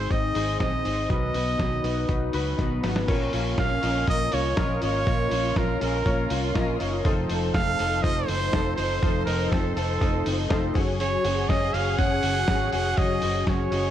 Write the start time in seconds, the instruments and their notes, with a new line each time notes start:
Already playing: clean electric guitar G#2 D#4 C5, steel-string acoustic guitar C4 D#4 G#4, synth keys D#4 G#4 C5, trumpet C5
0.09 fingered electric bass G#1, steel-string acoustic guitar G#3 C4, synth keys D#4 G#4 D#5, trumpet D#5, kick, closed hi-hat
0.13 steel-string acoustic guitar D#4 G#4
0.34 fingered electric bass G#1, steel-string acoustic guitar C4 D#4 G#4, synth keys D#4 G#4 C5, clean electric guitar C5, open hi-hat
0.38 steel-string acoustic guitar G#3
0.59 steel-string acoustic guitar G#2 D#3 G#3 C4 D#4 G#4, synth keys D#4 G#4 D#5, trumpet D#5, kick, snare, closed hi-hat
0.84 fingered electric bass G#1, steel-string acoustic guitar C4 D#4 G#4, synth keys D#4 G#4 D#5, clean electric guitar C5, open hi-hat
0.89 steel-string acoustic guitar G#3
1.09 fingered electric bass B1, steel-string acoustic guitar B2 D#3 F#3 B3 D#4 B4, synth keys D#4 F#4 B4, trumpet D#5, kick, closed hi-hat
1.34 fingered electric bass B1, steel-string acoustic guitar F#3 B3 D#4 B4, synth keys D#4 F#4 B4, open hi-hat
1.58 fingered electric bass B1, steel-string acoustic guitar B2 D#3 F#3 B3 D#4 B4, synth keys D#4 F#4 B4, kick, snare, closed hi-hat
1.83 fingered electric bass B1, steel-string acoustic guitar F#3 B3 D#4 B4, synth keys D#4 F#4 B4, open hi-hat
2.08 fingered electric bass B1, steel-string acoustic guitar F#3 B3 D#4 B4, synth keys D#4 F#4 B4, kick, closed hi-hat
2.32 fingered electric bass C#2, steel-string acoustic guitar B3 D#4 B4, synth keys D#4 F#4 B4, open hi-hat
2.37 steel-string acoustic guitar F#3
2.57 fingered electric bass B1, steel-string acoustic guitar B2 D#3 F#3 B3 D#4 B4, synth keys D#4 F#4 B4 B5, kick, snare, closed hi-hat
2.82 fingered electric bass G#1, steel-string acoustic guitar F#3 B3 D#4 B4, synth keys D#4 F#4 B4 F#5, snare, open hi-hat
2.96 snare
3.07 fingered electric bass A#1, steel-string acoustic guitar A#2 F3 A#3 C#4 F4 A#4, synth keys C#4 F4 A#4 C#5, violin section C#4, kick, open hi-hat, crash
3.32 fingered electric bass A#1, synth keys C#4 F4 A#4 C#5, steel-string acoustic guitar C#4 F4 A#4, open hi-hat
3.36 steel-string acoustic guitar A#3
3.57 fingered electric bass A#1, steel-string acoustic guitar A#2 F3 A#3 C#4 F4 A#4, synth keys C#4 F4 A#4 C#5, trumpet F5, kick, snare, open hi-hat
3.81 fingered electric bass A#1, synth keys C#4 F4 A#4 D#5, steel-string acoustic guitar C#4 F4 A#4, open hi-hat
3.86 steel-string acoustic guitar A#3
4.06 fingered electric bass A#1, steel-string acoustic guitar A#3 C#4 F4 A#4, synth keys C#4 F4 A#4 D#5, trumpet D#5, kick, open hi-hat
4.31 fingered electric bass C2, steel-string acoustic guitar A#3 C#4 F4 A#4, synth keys C#4 F4 A#4 C#5, trumpet C#5, open hi-hat
4.56 fingered electric bass A#1, steel-string acoustic guitar A#2 F3 A#3 C#4 F4 A#4, synth keys C#4 F4 A#4 D#5, violin section F4, kick, snare, open hi-hat
4.81 fingered electric bass G#1, steel-string acoustic guitar A#3 C#4 F4 A#4, synth keys C#4 F4 A#4 C#5, trumpet C#5, open hi-hat
5.05 fingered electric bass A#1, steel-string acoustic guitar A#2 F3 A#3 C#4 F4 A#4, synth keys C#4 F4 A#4 C#5, kick, open hi-hat
5.30 fingered electric bass A#1, steel-string acoustic guitar A#3 C#4 F4 A#4, synth keys C#4 F4 A#4 C#5, open hi-hat
5.55 fingered electric bass A#1, steel-string acoustic guitar A#2 F3 A#3 C#4 F4 A#4, synth keys C#4 F4 A#4 C#5, trumpet A#4, kick, snare, open hi-hat
5.80 fingered electric bass A#1, steel-string acoustic guitar A#3 C#4 F4 A#4, synth keys C#4 F4 A#4 C#5, clean electric guitar G#4, trumpet A#4, open hi-hat
5.94 clean electric guitar A#4
6.05 fingered electric bass A#1, steel-string acoustic guitar A#3 C#4 F4 A#4, synth keys C#4 F4 A#4 C#5, violin section F4, kick, open hi-hat
6.29 fingered electric bass C2, steel-string acoustic guitar A#3 C#4 F4 A#4, synth keys C#4 F4 A#4 C#5, open hi-hat
6.54 fingered electric bass A#1, steel-string acoustic guitar A#2 F3 A#3 C#4 F4 A#4, synth keys C#4 F4 A#4 D#5, kick, snare, open hi-hat
6.79 fingered electric bass F#1, steel-string acoustic guitar A#3 C#4 F4 A#4, synth keys C#4 F4 A#4 C#5, clean electric guitar D#4, open hi-hat
6.93 clean electric guitar F4
7.04 fingered electric bass F1, steel-string acoustic guitar F3 A3 C4 D#4 A4, synth keys D#4 F4 A4 C5, violin section A4, kick, open hi-hat
7.29 fingered electric bass F1, steel-string acoustic guitar C4 D#4 A4, synth keys D#4 F4 A4 C5, open hi-hat
7.54 fingered electric bass F1, steel-string acoustic guitar F3 A3 C4 D#4 A4, synth keys D#4 F4 A4, trumpet F5, kick, snare, open hi-hat
7.78 fingered electric bass F1, steel-string acoustic guitar C4 D#4 A4, synth keys D#4 F4 A4 C5, open hi-hat
8.02 fingered electric bass F1, steel-string acoustic guitar A3 C4 D#4, synth keys D#4 F4 A4 C5, violin section C5, trumpet D#5, kick, open hi-hat
8.07 steel-string acoustic guitar A4
8.26 fingered electric bass F#1, synth keys D#4 F4 A4 C5, steel-string acoustic guitar D#4 A4, trumpet C5, open hi-hat
8.31 steel-string acoustic guitar C4
8.52 fingered electric bass F1, steel-string acoustic guitar F3 A3 C4 D#4 A4, synth keys D#4 F4 A4 C5, kick, snare, open hi-hat
8.76 fingered electric bass F#1, synth keys D#4 F4 A4 C5, steel-string acoustic guitar D#4 A4, trumpet C5, open hi-hat
8.81 steel-string acoustic guitar C4
9.02 fingered electric bass F1, steel-string acoustic guitar F3 A3 C4 D#4 A4, synth keys D#4 F4 A4 C5, kick, open hi-hat
9.25 fingered electric bass F1, synth keys D#4 F4 A4 D#5, trumpet A#4, open hi-hat
9.29 steel-string acoustic guitar C4 D#4
9.50 fingered electric bass F1, steel-string acoustic guitar F3 A3 C4 D#4 A4, synth keys D#4 F4 A4, trumpet A4, kick, snare, open hi-hat
9.76 fingered electric bass F1, steel-string acoustic guitar C4 D#4 A4, synth keys D#4 F4 A4 C5, trumpet A4, open hi-hat
10.00 fingered electric bass F1, steel-string acoustic guitar A3 C4 D#4 A4, synth keys D#4 F4 A4 D#5, kick, open hi-hat
10.25 fingered electric bass F#1, steel-string acoustic guitar C4 D#4 A4, synth keys D#4 F4 A4 D#5, open hi-hat
10.49 fingered electric bass F1, steel-string acoustic guitar F3 A3 C4 D#4 A4, synth keys D#4 F4 A4 C5, kick, snare, open hi-hat
10.74 fingered electric bass F#1, clean electric guitar F#3, synth keys C#4 F#4 G#4 C#5, steel-string acoustic guitar F#4 G#4, violin section G#4, kick, open hi-hat
10.78 steel-string acoustic guitar C#4
10.99 steel-string acoustic guitar F#3 C#4 F#4 G#4, trumpet C#5, open hi-hat
11.23 fingered electric bass F#1, synth keys C#4 F#4 G#4 C5, steel-string acoustic guitar F#4 G#4, open hi-hat
11.28 steel-string acoustic guitar C#4
11.48 fingered electric bass F#1, steel-string acoustic guitar F#3 C#4 F#4 G#4, synth keys C#4 F#4 G#4 C#5, trumpet D#5, kick, snare, open hi-hat
11.73 fingered electric bass F#1, synth keys C#4 F#4 G#4 C#5, steel-string acoustic guitar F#4 G#4, trumpet F5, open hi-hat
11.77 steel-string acoustic guitar C#4
11.98 fingered electric bass F#1, steel-string acoustic guitar F#3 C#4 F#4 G#4, synth keys C#4 F#4 G#4 C#5, trumpet F#5, kick, open hi-hat
12.23 fingered electric bass F#1, synth keys C#4 F#4 G#4 C#5, steel-string acoustic guitar C#4 F#4 G#4, open hi-hat
12.48 fingered electric bass G#1, steel-string acoustic guitar F#3 C#4 F#4 G#4, synth keys C#4 F#4 G#4 C#5, kick, snare, open hi-hat
12.72 fingered electric bass F1, synth keys C#4 F#4 G#4 C#5, steel-string acoustic guitar C#4 F#4 G#4, trumpet F#5, open hi-hat
12.97 fingered electric bass F#1, steel-string acoustic guitar F#3 C#4 F#4 G#4, synth keys C#4 F#4 G#4 C#5, trumpet D#5, kick, open hi-hat
13.21 fingered electric bass F#1, synth keys C#4 F#4 G#4 C5, steel-string acoustic guitar F#4 G#4, open hi-hat
13.25 steel-string acoustic guitar C#4
13.46 fingered electric bass F#1, steel-string acoustic guitar F#3 C#4 F#4, synth keys C#4 F#4 G#4 C#5, trumpet C#5, kick, snare, open hi-hat
13.50 steel-string acoustic guitar G#4
13.70 fingered electric bass F#1, synth keys C#4 F#4 G#4 D#5, steel-string acoustic guitar F#4 G#4, open hi-hat
13.74 steel-string acoustic guitar C#4